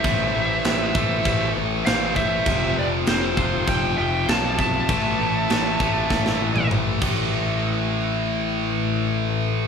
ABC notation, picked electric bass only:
X:1
M:4/4
L:1/8
Q:1/4=99
K:Am
V:1 name="Picked electric bass" clef=bass
A,,, A,,, A,,, A,,, A,,, A,,, A,,,2 | F,,, F,,, F,,, F,,, F,,, F,,, B,,,2 | A,,, A,,, A,,, A,,, A,,, A,,, A,,, A,,,- | A,,,8 |]